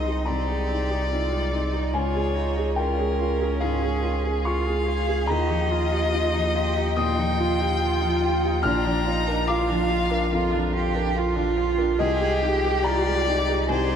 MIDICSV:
0, 0, Header, 1, 6, 480
1, 0, Start_track
1, 0, Key_signature, -3, "major"
1, 0, Tempo, 836820
1, 1113, Time_signature, 4, 2, 24, 8
1, 6876, Tempo, 849858
1, 7989, End_track
2, 0, Start_track
2, 0, Title_t, "Violin"
2, 0, Program_c, 0, 40
2, 0, Note_on_c, 0, 75, 75
2, 149, Note_on_c, 0, 74, 85
2, 158, Note_off_c, 0, 75, 0
2, 1108, Note_on_c, 0, 73, 83
2, 1116, Note_off_c, 0, 74, 0
2, 1582, Note_off_c, 0, 73, 0
2, 1585, Note_on_c, 0, 70, 87
2, 2068, Note_on_c, 0, 68, 74
2, 2077, Note_off_c, 0, 70, 0
2, 2548, Note_on_c, 0, 77, 88
2, 2556, Note_off_c, 0, 68, 0
2, 3029, Note_off_c, 0, 77, 0
2, 3032, Note_on_c, 0, 75, 114
2, 3995, Note_on_c, 0, 79, 110
2, 4003, Note_off_c, 0, 75, 0
2, 4955, Note_off_c, 0, 79, 0
2, 4958, Note_on_c, 0, 82, 114
2, 5439, Note_on_c, 0, 77, 107
2, 5448, Note_off_c, 0, 82, 0
2, 6158, Note_off_c, 0, 77, 0
2, 6874, Note_on_c, 0, 67, 102
2, 7357, Note_on_c, 0, 74, 125
2, 7365, Note_off_c, 0, 67, 0
2, 7837, Note_on_c, 0, 72, 103
2, 7846, Note_off_c, 0, 74, 0
2, 7989, Note_off_c, 0, 72, 0
2, 7989, End_track
3, 0, Start_track
3, 0, Title_t, "Cello"
3, 0, Program_c, 1, 42
3, 0, Note_on_c, 1, 63, 60
3, 148, Note_on_c, 1, 67, 70
3, 157, Note_off_c, 1, 63, 0
3, 624, Note_off_c, 1, 67, 0
3, 628, Note_on_c, 1, 65, 70
3, 867, Note_on_c, 1, 63, 69
3, 876, Note_off_c, 1, 65, 0
3, 1113, Note_on_c, 1, 65, 78
3, 1121, Note_off_c, 1, 63, 0
3, 1348, Note_on_c, 1, 63, 76
3, 1357, Note_off_c, 1, 65, 0
3, 1599, Note_on_c, 1, 61, 82
3, 1607, Note_off_c, 1, 63, 0
3, 2559, Note_on_c, 1, 65, 82
3, 2567, Note_off_c, 1, 61, 0
3, 2795, Note_off_c, 1, 65, 0
3, 2799, Note_on_c, 1, 68, 84
3, 3040, Note_on_c, 1, 67, 87
3, 3049, Note_off_c, 1, 68, 0
3, 3280, Note_on_c, 1, 65, 86
3, 3288, Note_off_c, 1, 67, 0
3, 3519, Note_on_c, 1, 63, 79
3, 3528, Note_off_c, 1, 65, 0
3, 3759, Note_on_c, 1, 67, 87
3, 3768, Note_off_c, 1, 63, 0
3, 4002, Note_on_c, 1, 63, 87
3, 4011, Note_off_c, 1, 67, 0
3, 4234, Note_off_c, 1, 63, 0
3, 4237, Note_on_c, 1, 65, 96
3, 4942, Note_off_c, 1, 65, 0
3, 4957, Note_on_c, 1, 62, 94
3, 5211, Note_on_c, 1, 63, 97
3, 5219, Note_off_c, 1, 62, 0
3, 5443, Note_off_c, 1, 63, 0
3, 5447, Note_on_c, 1, 65, 94
3, 5913, Note_off_c, 1, 65, 0
3, 5924, Note_on_c, 1, 65, 90
3, 6155, Note_off_c, 1, 65, 0
3, 6167, Note_on_c, 1, 67, 96
3, 6411, Note_on_c, 1, 65, 105
3, 6420, Note_off_c, 1, 67, 0
3, 6880, Note_on_c, 1, 68, 103
3, 6889, Note_off_c, 1, 65, 0
3, 7126, Note_on_c, 1, 67, 96
3, 7134, Note_off_c, 1, 68, 0
3, 7369, Note_on_c, 1, 65, 89
3, 7378, Note_off_c, 1, 67, 0
3, 7602, Note_on_c, 1, 63, 84
3, 7610, Note_off_c, 1, 65, 0
3, 7840, Note_on_c, 1, 68, 93
3, 7849, Note_off_c, 1, 63, 0
3, 7989, Note_off_c, 1, 68, 0
3, 7989, End_track
4, 0, Start_track
4, 0, Title_t, "Upright piano"
4, 0, Program_c, 2, 0
4, 0, Control_c, 2, 64, 127
4, 0, Note_on_c, 2, 36, 54
4, 0, Note_on_c, 2, 56, 46
4, 0, Note_on_c, 2, 63, 48
4, 0, Note_on_c, 2, 68, 47
4, 0, Note_on_c, 2, 79, 73
4, 0, Note_on_c, 2, 84, 79
4, 47, Note_off_c, 2, 68, 0
4, 47, Note_on_c, 2, 68, 52
4, 115, Note_off_c, 2, 63, 0
4, 131, Note_off_c, 2, 84, 0
4, 134, Note_off_c, 2, 36, 0
4, 146, Note_on_c, 2, 82, 83
4, 168, Note_on_c, 2, 36, 51
4, 233, Note_off_c, 2, 68, 0
4, 287, Note_off_c, 2, 56, 0
4, 287, Note_on_c, 2, 56, 49
4, 407, Note_on_c, 2, 63, 46
4, 472, Note_off_c, 2, 56, 0
4, 521, Note_on_c, 2, 68, 49
4, 592, Note_off_c, 2, 63, 0
4, 643, Note_on_c, 2, 63, 48
4, 709, Note_off_c, 2, 68, 0
4, 759, Note_on_c, 2, 56, 47
4, 829, Note_off_c, 2, 63, 0
4, 876, Note_on_c, 2, 63, 52
4, 948, Note_off_c, 2, 56, 0
4, 995, Note_on_c, 2, 68, 53
4, 1067, Note_off_c, 2, 63, 0
4, 1085, Note_off_c, 2, 82, 0
4, 1096, Note_off_c, 2, 36, 0
4, 1111, Note_on_c, 2, 80, 88
4, 1114, Note_off_c, 2, 68, 0
4, 1114, Note_on_c, 2, 37, 61
4, 1124, Control_c, 2, 64, 0
4, 1125, Note_off_c, 2, 79, 0
4, 1220, Control_c, 2, 64, 127
4, 1238, Note_on_c, 2, 56, 51
4, 1358, Note_on_c, 2, 65, 52
4, 1428, Note_off_c, 2, 56, 0
4, 1481, Note_on_c, 2, 68, 55
4, 1548, Note_off_c, 2, 65, 0
4, 1570, Note_off_c, 2, 80, 0
4, 1583, Note_on_c, 2, 79, 94
4, 1603, Note_on_c, 2, 65, 56
4, 1669, Note_off_c, 2, 68, 0
4, 1721, Note_on_c, 2, 56, 55
4, 1790, Note_off_c, 2, 65, 0
4, 1843, Note_on_c, 2, 65, 61
4, 1909, Note_off_c, 2, 56, 0
4, 1961, Note_on_c, 2, 68, 57
4, 2029, Note_off_c, 2, 65, 0
4, 2044, Note_off_c, 2, 79, 0
4, 2049, Note_off_c, 2, 37, 0
4, 2065, Note_on_c, 2, 77, 82
4, 2080, Note_on_c, 2, 44, 58
4, 2148, Note_off_c, 2, 68, 0
4, 2199, Note_on_c, 2, 56, 54
4, 2269, Note_off_c, 2, 44, 0
4, 2322, Note_on_c, 2, 65, 58
4, 2390, Note_off_c, 2, 56, 0
4, 2444, Note_on_c, 2, 68, 53
4, 2512, Note_off_c, 2, 65, 0
4, 2529, Note_off_c, 2, 77, 0
4, 2554, Note_on_c, 2, 85, 92
4, 2563, Note_on_c, 2, 65, 63
4, 2633, Note_off_c, 2, 68, 0
4, 2684, Note_on_c, 2, 56, 54
4, 2751, Note_off_c, 2, 65, 0
4, 2799, Note_on_c, 2, 65, 67
4, 2872, Note_off_c, 2, 56, 0
4, 2919, Note_on_c, 2, 68, 60
4, 2989, Note_off_c, 2, 65, 0
4, 3011, Note_off_c, 2, 85, 0
4, 3025, Note_on_c, 2, 82, 114
4, 3037, Note_off_c, 2, 68, 0
4, 3038, Note_on_c, 2, 39, 74
4, 3046, Control_c, 2, 64, 0
4, 3150, Control_c, 2, 64, 127
4, 3155, Note_on_c, 2, 53, 55
4, 3276, Note_on_c, 2, 65, 61
4, 3346, Note_off_c, 2, 53, 0
4, 3395, Note_on_c, 2, 67, 62
4, 3467, Note_off_c, 2, 65, 0
4, 3514, Note_on_c, 2, 65, 66
4, 3587, Note_off_c, 2, 67, 0
4, 3637, Note_on_c, 2, 53, 61
4, 3709, Note_off_c, 2, 65, 0
4, 3756, Note_on_c, 2, 65, 71
4, 3832, Note_off_c, 2, 53, 0
4, 3881, Note_on_c, 2, 67, 67
4, 3952, Note_off_c, 2, 65, 0
4, 3974, Note_off_c, 2, 82, 0
4, 3981, Note_off_c, 2, 39, 0
4, 3996, Note_on_c, 2, 87, 108
4, 3998, Note_on_c, 2, 46, 68
4, 4074, Note_off_c, 2, 67, 0
4, 4120, Note_on_c, 2, 53, 65
4, 4192, Note_off_c, 2, 46, 0
4, 4245, Note_on_c, 2, 65, 63
4, 4312, Note_off_c, 2, 53, 0
4, 4367, Note_on_c, 2, 67, 67
4, 4434, Note_off_c, 2, 65, 0
4, 4486, Note_on_c, 2, 65, 65
4, 4555, Note_off_c, 2, 67, 0
4, 4606, Note_on_c, 2, 53, 65
4, 4674, Note_off_c, 2, 65, 0
4, 4723, Note_on_c, 2, 65, 69
4, 4794, Note_off_c, 2, 53, 0
4, 4841, Note_on_c, 2, 67, 68
4, 4912, Note_off_c, 2, 65, 0
4, 4932, Note_off_c, 2, 87, 0
4, 4949, Note_on_c, 2, 89, 121
4, 4960, Note_off_c, 2, 67, 0
4, 4963, Note_on_c, 2, 34, 82
4, 4968, Control_c, 2, 64, 0
4, 5074, Control_c, 2, 64, 127
4, 5085, Note_on_c, 2, 53, 66
4, 5203, Note_on_c, 2, 65, 70
4, 5274, Note_off_c, 2, 53, 0
4, 5322, Note_on_c, 2, 70, 69
4, 5393, Note_off_c, 2, 65, 0
4, 5411, Note_off_c, 2, 89, 0
4, 5435, Note_on_c, 2, 86, 108
4, 5444, Note_on_c, 2, 65, 72
4, 5512, Note_off_c, 2, 70, 0
4, 5564, Note_on_c, 2, 53, 69
4, 5634, Note_off_c, 2, 65, 0
4, 5680, Note_on_c, 2, 65, 75
4, 5754, Note_off_c, 2, 53, 0
4, 5798, Note_on_c, 2, 70, 71
4, 5871, Note_off_c, 2, 65, 0
4, 5898, Note_off_c, 2, 34, 0
4, 5921, Note_on_c, 2, 41, 71
4, 5990, Note_off_c, 2, 70, 0
4, 6042, Note_on_c, 2, 53, 68
4, 6111, Note_off_c, 2, 41, 0
4, 6133, Note_off_c, 2, 86, 0
4, 6163, Note_on_c, 2, 65, 68
4, 6231, Note_off_c, 2, 53, 0
4, 6283, Note_on_c, 2, 70, 65
4, 6351, Note_off_c, 2, 65, 0
4, 6400, Note_on_c, 2, 65, 66
4, 6471, Note_off_c, 2, 70, 0
4, 6521, Note_on_c, 2, 53, 64
4, 6590, Note_off_c, 2, 65, 0
4, 6638, Note_on_c, 2, 65, 70
4, 6710, Note_off_c, 2, 53, 0
4, 6758, Note_on_c, 2, 70, 66
4, 6830, Note_off_c, 2, 65, 0
4, 6877, Note_on_c, 2, 75, 115
4, 6878, Note_off_c, 2, 70, 0
4, 6882, Note_on_c, 2, 36, 76
4, 6887, Control_c, 2, 64, 0
4, 6971, Control_c, 2, 64, 127
4, 6997, Note_on_c, 2, 56, 64
4, 7123, Note_on_c, 2, 63, 67
4, 7192, Note_off_c, 2, 56, 0
4, 7250, Note_on_c, 2, 68, 63
4, 7316, Note_off_c, 2, 63, 0
4, 7340, Note_off_c, 2, 75, 0
4, 7359, Note_on_c, 2, 82, 121
4, 7366, Note_on_c, 2, 67, 72
4, 7439, Note_off_c, 2, 68, 0
4, 7487, Note_on_c, 2, 56, 63
4, 7556, Note_off_c, 2, 67, 0
4, 7603, Note_on_c, 2, 63, 71
4, 7676, Note_off_c, 2, 56, 0
4, 7722, Note_on_c, 2, 68, 65
4, 7792, Note_off_c, 2, 63, 0
4, 7815, Note_off_c, 2, 82, 0
4, 7819, Note_off_c, 2, 36, 0
4, 7833, Note_on_c, 2, 80, 91
4, 7840, Note_on_c, 2, 36, 69
4, 7911, Note_off_c, 2, 68, 0
4, 7956, Note_on_c, 2, 56, 62
4, 7989, Note_off_c, 2, 36, 0
4, 7989, Note_off_c, 2, 56, 0
4, 7989, Note_off_c, 2, 80, 0
4, 7989, End_track
5, 0, Start_track
5, 0, Title_t, "Viola"
5, 0, Program_c, 3, 41
5, 32, Note_on_c, 3, 63, 50
5, 151, Note_off_c, 3, 63, 0
5, 155, Note_on_c, 3, 60, 54
5, 274, Note_on_c, 3, 63, 50
5, 282, Note_off_c, 3, 60, 0
5, 392, Note_on_c, 3, 60, 55
5, 400, Note_off_c, 3, 63, 0
5, 512, Note_on_c, 3, 63, 53
5, 521, Note_off_c, 3, 60, 0
5, 628, Note_off_c, 3, 63, 0
5, 631, Note_on_c, 3, 60, 57
5, 754, Note_on_c, 3, 63, 52
5, 762, Note_off_c, 3, 60, 0
5, 876, Note_on_c, 3, 60, 51
5, 885, Note_off_c, 3, 63, 0
5, 994, Note_on_c, 3, 63, 57
5, 1003, Note_off_c, 3, 60, 0
5, 1110, Note_off_c, 3, 63, 0
5, 1113, Note_on_c, 3, 65, 57
5, 1232, Note_on_c, 3, 68, 54
5, 1241, Note_off_c, 3, 65, 0
5, 1356, Note_on_c, 3, 65, 54
5, 1364, Note_off_c, 3, 68, 0
5, 1470, Note_on_c, 3, 68, 56
5, 1479, Note_off_c, 3, 65, 0
5, 1588, Note_off_c, 3, 68, 0
5, 1591, Note_on_c, 3, 65, 57
5, 1713, Note_on_c, 3, 68, 56
5, 1722, Note_off_c, 3, 65, 0
5, 1828, Note_on_c, 3, 65, 63
5, 1837, Note_off_c, 3, 68, 0
5, 1947, Note_on_c, 3, 68, 55
5, 1956, Note_off_c, 3, 65, 0
5, 2065, Note_off_c, 3, 68, 0
5, 2069, Note_on_c, 3, 65, 66
5, 2192, Note_on_c, 3, 68, 62
5, 2200, Note_off_c, 3, 65, 0
5, 2307, Note_on_c, 3, 65, 62
5, 2316, Note_off_c, 3, 68, 0
5, 2427, Note_on_c, 3, 68, 56
5, 2436, Note_off_c, 3, 65, 0
5, 2545, Note_off_c, 3, 68, 0
5, 2549, Note_on_c, 3, 65, 68
5, 2671, Note_on_c, 3, 68, 61
5, 2679, Note_off_c, 3, 65, 0
5, 2791, Note_on_c, 3, 65, 66
5, 2800, Note_off_c, 3, 68, 0
5, 2908, Note_on_c, 3, 68, 62
5, 2917, Note_off_c, 3, 65, 0
5, 3029, Note_off_c, 3, 68, 0
5, 3032, Note_on_c, 3, 65, 62
5, 3156, Note_on_c, 3, 63, 64
5, 3165, Note_off_c, 3, 65, 0
5, 3277, Note_on_c, 3, 65, 63
5, 3286, Note_off_c, 3, 63, 0
5, 3390, Note_on_c, 3, 63, 61
5, 3398, Note_off_c, 3, 65, 0
5, 3510, Note_off_c, 3, 63, 0
5, 3513, Note_on_c, 3, 65, 72
5, 3637, Note_on_c, 3, 63, 64
5, 3646, Note_off_c, 3, 65, 0
5, 3758, Note_on_c, 3, 65, 71
5, 3767, Note_off_c, 3, 63, 0
5, 3879, Note_on_c, 3, 63, 64
5, 3888, Note_off_c, 3, 65, 0
5, 3999, Note_off_c, 3, 63, 0
5, 4002, Note_on_c, 3, 65, 78
5, 4122, Note_on_c, 3, 63, 69
5, 4130, Note_off_c, 3, 65, 0
5, 4242, Note_on_c, 3, 65, 74
5, 4251, Note_off_c, 3, 63, 0
5, 4357, Note_on_c, 3, 63, 66
5, 4365, Note_off_c, 3, 65, 0
5, 4471, Note_off_c, 3, 63, 0
5, 4475, Note_on_c, 3, 65, 72
5, 4593, Note_on_c, 3, 63, 66
5, 4602, Note_off_c, 3, 65, 0
5, 4713, Note_on_c, 3, 65, 67
5, 4722, Note_off_c, 3, 63, 0
5, 4835, Note_on_c, 3, 63, 71
5, 4843, Note_off_c, 3, 65, 0
5, 4944, Note_off_c, 3, 63, 0
5, 4947, Note_on_c, 3, 65, 76
5, 5073, Note_on_c, 3, 62, 74
5, 5082, Note_off_c, 3, 65, 0
5, 5190, Note_on_c, 3, 65, 70
5, 5199, Note_off_c, 3, 62, 0
5, 5309, Note_on_c, 3, 62, 74
5, 5317, Note_off_c, 3, 65, 0
5, 5431, Note_off_c, 3, 62, 0
5, 5434, Note_on_c, 3, 65, 72
5, 5559, Note_on_c, 3, 62, 72
5, 5568, Note_off_c, 3, 65, 0
5, 5676, Note_on_c, 3, 65, 77
5, 5685, Note_off_c, 3, 62, 0
5, 5794, Note_on_c, 3, 62, 74
5, 5802, Note_off_c, 3, 65, 0
5, 5915, Note_off_c, 3, 62, 0
5, 5918, Note_on_c, 3, 65, 77
5, 6036, Note_on_c, 3, 62, 69
5, 6044, Note_off_c, 3, 65, 0
5, 6156, Note_on_c, 3, 65, 71
5, 6164, Note_off_c, 3, 62, 0
5, 6276, Note_on_c, 3, 62, 67
5, 6284, Note_off_c, 3, 65, 0
5, 6396, Note_off_c, 3, 62, 0
5, 6399, Note_on_c, 3, 65, 71
5, 6514, Note_on_c, 3, 62, 68
5, 6523, Note_off_c, 3, 65, 0
5, 6638, Note_on_c, 3, 65, 72
5, 6647, Note_off_c, 3, 62, 0
5, 6758, Note_on_c, 3, 62, 69
5, 6766, Note_off_c, 3, 65, 0
5, 6877, Note_off_c, 3, 62, 0
5, 6880, Note_on_c, 3, 67, 87
5, 7818, Note_off_c, 3, 67, 0
5, 7840, Note_on_c, 3, 67, 89
5, 7989, Note_off_c, 3, 67, 0
5, 7989, End_track
6, 0, Start_track
6, 0, Title_t, "Sub bass"
6, 0, Program_c, 4, 38
6, 0, Note_on_c, 4, 36, 67
6, 1109, Note_on_c, 4, 37, 72
6, 1117, Note_off_c, 4, 36, 0
6, 3031, Note_on_c, 4, 39, 81
6, 3039, Note_off_c, 4, 37, 0
6, 4961, Note_on_c, 4, 34, 80
6, 4970, Note_off_c, 4, 39, 0
6, 6879, Note_on_c, 4, 36, 82
6, 6887, Note_off_c, 4, 34, 0
6, 7989, Note_off_c, 4, 36, 0
6, 7989, End_track
0, 0, End_of_file